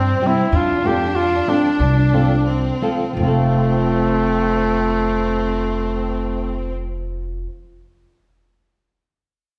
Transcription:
Already playing: upright bass G2, trumpet C4, violin section C4
0.21 nylon-string guitar C3 G3 C4 E4 G4
0.27 trumpet E4
0.52 upright bass F2, violin section D4
0.56 trumpet F4
0.85 nylon-string guitar F3 C4 F4 A4, trumpet G4
1.16 trumpet F4
1.48 nylon-string guitar F3 C4 F4 A4, trumpet D4
1.79 upright bass C2
2.13 nylon-string guitar F3 C4 F4 A4
2.47 violin section C4
2.82 nylon-string guitar F3 C4 F4 A4
3.13 upright bass F1, nylon-string guitar F3, trumpet A3
3.17 violin section C4, nylon-string guitar C4
3.23 nylon-string guitar F4
3.27 nylon-string guitar A4

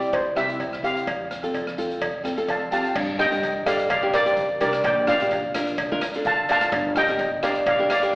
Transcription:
Already playing: upright bass C2, nylon-string guitar C4 E4 G4, steel pan D5
0.02 closed hi-hat
0.13 steel pan C5, kick, closed hi-hat, cowbell
0.36 upright bass C2, nylon-string guitar C4 E4 G4, steel pan E5, cross-stick, closed hi-hat
0.48 nylon-string guitar C4 E4 G4, closed hi-hat
0.60 kick, closed hi-hat, cowbell
0.73 cross-stick
0.83 nylon-string guitar C4 E4 G4, steel pan F5, closed hi-hat
0.96 closed hi-hat
1.07 upright bass F2, kick, closed hi-hat, cowbell
1.31 cross-stick, closed hi-hat
1.43 upright bass F2, nylon-string guitar C4 F4 A4, closed hi-hat
1.54 kick, closed hi-hat, cowbell
1.67 cross-stick
1.78 nylon-string guitar C4 F4 A4, closed hi-hat
1.91 closed hi-hat
2.01 kick, closed hi-hat, cowbell
2.24 upright bass F2, nylon-string guitar C4 F4 A4, cross-stick, closed hi-hat
2.37 nylon-string guitar C4 F4 A4, closed hi-hat
2.48 steel pan F5 A5, kick, closed hi-hat, cowbell
2.71 nylon-string guitar C4 F4 G4, steel pan F5 A5, closed hi-hat
2.84 closed hi-hat
2.95 upright bass G2, kick, crash, cowbell
3.19 nylon-string guitar D4 G4 A#4, steel pan D#5 G5, cross-stick, closed hi-hat
3.31 upright bass G2, nylon-string guitar D4 G4 A#4, closed hi-hat
3.43 kick, closed hi-hat, cowbell
3.66 nylon-string guitar D4 G4 A4, steel pan D5 F5, cross-stick, closed hi-hat, cowbell
3.79 closed hi-hat
3.90 steel pan D5 F5, kick, closed hi-hat, cowbell
4.02 nylon-string guitar D4 G4 A#4
4.14 steel pan A#4 D5, cross-stick, closed hi-hat, cowbell
4.25 nylon-string guitar D4 G4 C5, closed hi-hat
4.37 kick, closed hi-hat
4.60 upright bass C2, nylon-string guitar D4 G4 A#4, steel pan A#4 D5, closed hi-hat, cowbell
4.73 cross-stick, closed hi-hat
4.84 upright bass A#1, steel pan D5 G5, kick, closed hi-hat, cowbell
5.07 nylon-string guitar D4 F4 A#4, steel pan D5 F5, cross-stick, closed hi-hat
5.20 upright bass A#1, nylon-string guitar D4 F4 G4, closed hi-hat
5.31 kick, closed hi-hat, cowbell
5.55 nylon-string guitar D4 F4 A#4, cross-stick, closed hi-hat, cowbell
5.67 closed hi-hat
5.78 kick, closed hi-hat, cowbell
5.91 nylon-string guitar D4 F4 A#4
6.01 cross-stick, closed hi-hat, cowbell
6.14 nylon-string guitar D4 F4 A4, closed hi-hat
6.25 steel pan F5 A5, kick, closed hi-hat
6.49 upright bass A1, nylon-string guitar D4 F4 A#4, steel pan F5 A5, closed hi-hat, cowbell
6.61 cross-stick, closed hi-hat
6.72 upright bass G1, kick, closed hi-hat, cowbell
6.96 nylon-string guitar D4 G4 A#4, steel pan D#5 G5, cross-stick, closed hi-hat
7.08 upright bass G1, nylon-string guitar D4 G4 A#4, closed hi-hat
7.19 kick, closed hi-hat, cowbell
7.43 nylon-string guitar D4 G4 A#4, steel pan D5 F5, cross-stick, closed hi-hat, cowbell
7.55 closed hi-hat
7.66 steel pan D5 F5, kick, closed hi-hat, cowbell
7.79 nylon-string guitar D4 G4 A#4
7.90 steel pan D5 F5, cross-stick, closed hi-hat, cowbell
8.02 nylon-string guitar D4 G4 A#4, closed hi-hat

